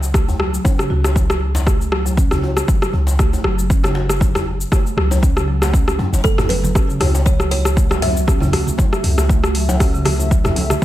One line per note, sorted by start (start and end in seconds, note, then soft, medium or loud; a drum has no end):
0.00 0.58 C#2 loud
0.00 shaker medium
0.14 0.26 A3 medium
0.14 kick loud
0.14 cross-stick medium
0.14 shaker medium
0.28 djembe tone medium
0.28 djembe bass medium
0.28 shaker soft
0.39 0.52 F#3 medium
0.39 cross-stick medium
0.53 0.64 F#3 medium
0.53 shaker medium
0.65 0.77 C#4 medium
0.65 kick loud
0.65 djembe tone loud
0.65 shaker medium
0.78 0.85 C#3 loud
0.78 cross-stick medium
0.78 shaker soft
0.90 2.61 C#2 loud
0.90 1.03 F#4 loud
1.04 cross-stick medium
1.04 djembe slap medium
1.04 shaker medium
1.15 1.29 F#3 medium
1.15 kick loud
1.15 djembe tone medium
1.15 shaker medium
1.30 cross-stick loud
1.30 shaker soft
1.55 djembe slap loud
1.55 djembe tone medium
1.55 shaker medium
1.66 1.79 A3 medium
1.66 kick loud
1.66 cross-stick medium
1.66 shaker medium
1.81 shaker soft
1.92 2.04 F#3 medium
1.92 cross-stick loud
2.05 2.16 F#3 medium
2.05 djembe tone medium
2.05 shaker medium
2.17 2.30 C#4 medium
2.17 kick loud
2.17 shaker medium
2.31 2.38 C#3 loud
2.31 cross-stick medium
2.31 djembe bass medium
2.31 shaker soft
2.43 2.55 F#4 loud
2.43 djembe tone medium
2.57 cross-stick medium
2.57 shaker medium
2.68 2.81 F#3 medium
2.68 kick loud
2.68 shaker medium
2.82 cross-stick medium
2.82 shaker soft
2.93 3.37 C#2 loud
2.93 djembe tone medium
3.07 djembe slap medium
3.07 shaker medium
3.19 3.31 A3 medium
3.19 kick loud
3.19 cross-stick medium
3.19 shaker medium
3.33 djembe tone loud
3.33 shaker soft
3.44 4.65 F#1 loud
3.44 3.57 F#3 medium
3.44 cross-stick medium
3.58 3.69 F#3 medium
3.58 shaker medium
3.70 3.82 C#4 medium
3.70 kick loud
3.70 shaker medium
3.83 3.90 C#3 loud
3.83 cross-stick medium
3.83 djembe slap medium
3.83 djembe tone medium
3.83 shaker soft
3.95 4.08 F#4 loud
3.95 djembe slap medium
4.09 cross-stick medium
4.09 shaker medium
4.20 4.34 F#3 medium
4.20 kick loud
4.20 djembe tone medium
4.20 shaker medium
4.35 cross-stick medium
4.35 djembe bass medium
4.35 shaker soft
4.61 shaker medium
4.72 4.84 A3 medium
4.72 kick loud
4.72 cross-stick medium
4.72 djembe tone medium
4.72 shaker medium
4.87 shaker soft
4.97 5.98 C#2 loud
4.97 5.10 F#3 medium
4.97 cross-stick medium
5.11 5.21 F#3 medium
5.11 djembe slap medium
5.11 djembe tone loud
5.11 shaker medium
5.22 5.35 C#4 medium
5.22 kick loud
5.22 shaker medium
5.36 5.43 C#3 loud
5.36 cross-stick medium
5.36 shaker soft
5.48 5.60 F#3 medium
5.62 5.68 A3 medium
5.62 cross-stick medium
5.62 djembe slap loud
5.62 djembe tone medium
5.62 shaker medium
5.73 5.81 C#4 medium
5.73 kick loud
5.73 shaker medium
5.88 cross-stick medium
5.88 shaker soft
5.99 6.07 F#2 medium
5.99 6.11 F#3 medium
5.99 djembe tone medium
6.13 6.20 F#1 loud
6.13 djembe slap medium
6.13 shaker medium
6.24 6.81 F#1 loud
6.24 10.85 A3 medium
6.24 6.37 A3 medium
6.24 10.27 F#4 medium
6.24 6.50 A4 loud
6.24 10.85 E5 medium
6.24 kick loud
6.24 muted conga medium
6.24 shaker medium
6.38 cross-stick medium
6.38 mid tom medium
6.38 low conga loud
6.38 djembe bass medium
6.38 shaker soft
6.49 6.62 F#3 medium
6.49 6.97 B4 loud
6.49 open hi-hat medium
6.49 high conga loud
6.63 6.74 F#3 medium
6.63 muted conga soft
6.63 high conga medium
6.63 djembe tone medium
6.63 low conga loud
6.63 shaker medium
6.75 6.88 C#4 medium
6.75 kick loud
6.75 cross-stick medium
6.75 shaker medium
6.89 6.95 C#3 loud
6.89 shaker soft
7.00 8.71 C#2 loud
7.00 7.13 F#4 loud
7.00 cross-stick medium
7.00 mid tom medium
7.00 open hi-hat medium
7.00 muted conga soft
7.00 djembe tone medium
7.15 djembe slap medium
7.15 shaker medium
7.25 7.39 F#3 medium
7.25 7.37 C#5 medium
7.25 kick loud
7.25 shaker medium
7.39 cross-stick medium
7.39 muted conga soft
7.39 high conga medium
7.39 shaker soft
7.51 7.99 C#5 medium
7.51 open hi-hat medium
7.51 djembe tone medium
7.65 cross-stick medium
7.65 shaker medium
7.76 7.89 A3 medium
7.76 kick loud
7.76 muted conga medium
7.76 shaker medium
7.91 cross-stick medium
7.91 djembe slap medium
7.91 high conga medium
7.91 djembe tone loud
7.91 shaker soft
8.02 8.15 F#3 medium
8.02 8.75 E5 loud
8.02 mid tom medium
8.02 open hi-hat medium
8.02 djembe slap medium
8.16 8.26 F#3 medium
8.16 shaker medium
8.27 8.40 C#4 medium
8.27 kick loud
8.27 cross-stick medium
8.27 muted conga medium
8.27 high conga medium
8.27 shaker medium
8.40 8.48 C#3 loud
8.40 mid tom medium
8.40 djembe tone medium
8.40 low conga loud
8.40 djembe bass medium
8.40 shaker soft
8.53 8.65 F#4 loud
8.53 cross-stick medium
8.53 open hi-hat medium
8.53 high conga medium
8.67 muted conga soft
8.67 high conga medium
8.67 low conga loud
8.67 shaker medium
8.78 8.91 F#3 medium
8.78 kick loud
8.78 djembe tone medium
8.78 shaker medium
8.93 cross-stick medium
8.93 shaker soft
9.03 10.75 C#2 loud
9.03 mid tom medium
9.03 open hi-hat medium
9.03 muted conga soft
9.18 cross-stick medium
9.18 djembe slap medium
9.18 shaker medium
9.29 9.42 A3 medium
9.29 kick loud
9.29 djembe tone medium
9.29 shaker medium
9.43 cross-stick medium
9.43 muted conga soft
9.43 shaker soft
9.55 9.67 F#3 medium
9.55 open hi-hat medium
9.68 9.79 F#3 medium
9.68 djembe slap medium
9.68 high conga loud
9.68 djembe tone medium
9.68 shaker medium
9.80 9.93 C#4 medium
9.80 kick loud
9.80 cross-stick medium
9.80 open hi-hat medium
9.80 muted conga medium
9.80 shaker medium
9.94 10.00 C#3 loud
9.94 shaker soft
10.05 10.18 F#4 loud
10.05 cross-stick medium
10.05 open hi-hat medium
10.05 high conga loud
10.05 low conga medium
10.19 djembe tone medium
10.19 shaker medium
10.31 10.44 F#3 medium
10.31 10.85 G#4 medium
10.31 kick loud
10.31 muted conga medium
10.31 shaker medium
10.44 cross-stick medium
10.44 mid tom loud
10.44 djembe bass medium
10.44 low conga medium
10.44 shaker soft
10.56 open hi-hat medium
10.56 djembe tone medium
10.56 high conga loud
10.70 cross-stick medium
10.70 muted conga soft
10.70 high conga medium
10.70 low conga loud
10.70 shaker medium